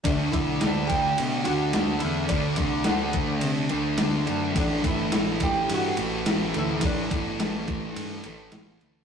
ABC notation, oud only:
X:1
M:4/4
L:1/8
Q:1/4=106
K:D
V:1 name="Oud"
D E2 G2 F2 E | D2 F4 z2 | D E2 G F3 E | D6 z2 |]